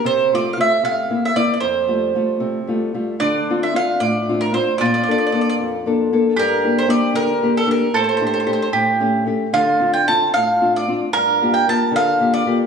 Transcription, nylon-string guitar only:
X:1
M:6/8
L:1/8
Q:3/8=76
K:F
V:1 name="Nylon-string guitar"
C, [A,CF] [A,CF] C, [B,CE] [B,CE] | F,, [G,A,F] [G,A,F] C, [G,A,F] [G,A,F] | [K:Dm] D, [CDF] [CDF] A,, [CDF] [CDF] | B,, [B,DA] [B,DA] F,, [B,DA] [B,DA] |
G,, [B,DG] [B,DG] D, [B,DG] [B,DG] | A,, [A,DG] [A,DG] A,, [A,^CG] [A,CG] | D, [CDF] [CDF] A,, [CDF] [CDF] | G,, [B,FG] [B,FG] D, [B,FG] [B,FG] |]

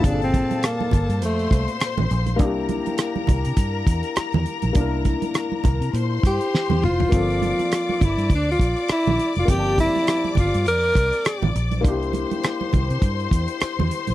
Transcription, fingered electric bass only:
X:1
M:4/4
L:1/16
Q:"Swing 16ths" 1/4=102
K:Gdor
V:1 name="Fingered electric bass" clef=bass
G,,,3 z3 G,,, G,, F,,2 C,, z2 A,,, B,,,2 | C,,3 z3 C,, C, G,,2 E,, z2 E,, z B,,, | C,,3 z3 C,, C, B,,2 G,, z2 E,, F,,,2 | G,,,3 z3 G,,, G,, D,,2 B,,, z2 B,,, z F,,, |
G,,,3 z3 G,,, G,, F,,2 C,, z2 A,,, B,,,2 | C,,3 z3 C,, C, G,,2 E,, z2 E,, z B,,, |]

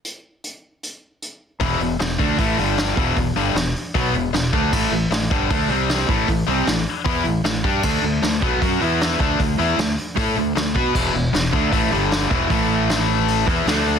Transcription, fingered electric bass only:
X:1
M:4/4
L:1/8
Q:1/4=154
K:A
V:1 name="Fingered electric bass" clef=bass
z8 | E,,, E,,, E,,, D,, A,,, =G,,,2 E,,, | E,,, =G,,, E,,, z B,,, E,,, E,,, D,, | A,,, A,,, A,,, =G,,, D,, =C,,2 A,,, |
A,,, =C,, A,,, z E,, A,,, A,,, =G,, | D,, D,, D,, B,,, F,, E,,2 D,, | D,, E,, D,, z A,, D,, D,, B,, | E,,, E,,, E,,, D,, A,,, =G,,,2 E,,, |
A,,,4- A,,, E,, D,,2 |]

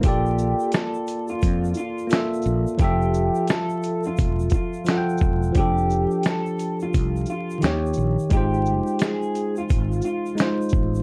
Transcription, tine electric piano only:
X:1
M:4/4
L:1/8
Q:"Swing 16ths" 1/4=87
K:F
V:1 name="Tine electric piano"
[B,FAd]4 z2 [B,FAe]2 | [F,FAe]4 z2 [F,FA_g=g]2 | [F,DGA]4 z2 [_E,_EG_d]2 | [_A,_EFc]4 z2 [A,EFc]2 |]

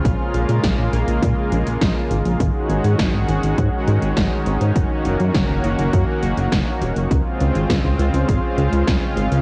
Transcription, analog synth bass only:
X:1
M:4/4
L:1/16
Q:1/4=102
K:Bbm
V:1 name="Analog synth bass" clef=bass
B,,, z B,,, B,, B,,, B,,, B,,, B,,, B,, z B,,, B,,, B,,, z A,,, B,,, | A,,, z A,,, A,, A,,, A,,, A,,, A,,, A,, z A,, A,,, A,,, z A,,, A,, | G,,, z G,,, G,, G,,, G,,, G,,, G,,, G,, z G,,, G,,, G,,, z E,,, G,,, | D,, z D,, A,,, D,, D,, D,, D,, A,,, z D,, D,, D,, z A,,, D,, |]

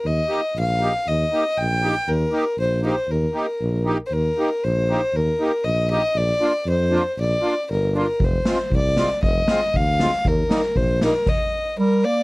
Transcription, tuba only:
X:1
M:2/4
L:1/8
Q:1/4=118
K:Eb
V:1 name="Tuba" clef=bass
E,, z B,,,2 | E,, z B,,,2 | E,, z B,,,2 | E,, z B,,,2 |
E,, z B,,,2 | E,, z B,,,2 | B,,, z F,,2 | B,,, z G,,,2 |
F,,, z C,,2 | F,,, z D,,2 | E,, z B,,,2 | z4 |]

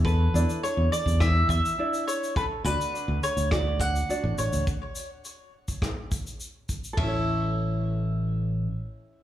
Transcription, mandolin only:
X:1
M:4/4
L:1/8
Q:1/4=104
K:A
V:1 name="Mandolin"
B2 c d e e2 c | B B2 c d f2 c | z8 | e8 |]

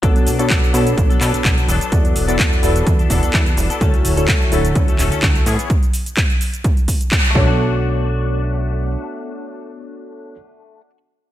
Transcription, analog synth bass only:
X:1
M:4/4
L:1/16
Q:"Swing 16ths" 1/4=127
K:Bm
V:1 name="Analog synth bass" clef=bass
B,,,2 B,,2 B,,,2 B,,2 B,,,2 B,, B,,, B,,,2 E,,, z | E,,2 E,,,2 E,,2 E,,,2 E,,2 E,,, E,, E,,2 E,,, z | D,,2 D,,,2 D,,2 D,,,2 D,,2 D,,, z D,,2 A,, z | z12 z2 B,,,2- |
B,,,12 z4 | z16 |]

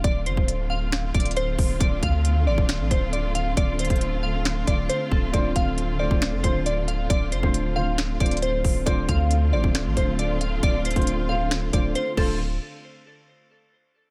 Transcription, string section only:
X:1
M:4/4
L:1/8
Q:1/4=136
K:Dm
V:1 name="String section"
[D,A,CF]8- | [D,A,CF]8- | [D,A,CF]8- | [D,A,CF]8- |
[D,A,CF]8 | [D,A,CF]8- | [D,A,CF]6- [D,A,CF] [D,A,CF] | z8 |]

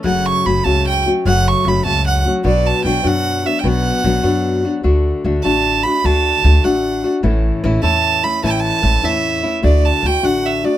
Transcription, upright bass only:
X:1
M:6/8
L:1/8
Q:3/8=100
K:D
V:1 name="Upright bass" clef=bass
F,,,2 F,,, C,,3 | F,,,2 F,,, C,,3 | B,,,2 B,,, F,,3 | B,,,2 B,,, F,,3 |
D,,2 D,, A,,,3 | D,,2 D,, A,,,3 | A,,,2 A,,, E,,3 | A,,,2 A,,, E,,3 |
D,,2 D,, A,,,3 |]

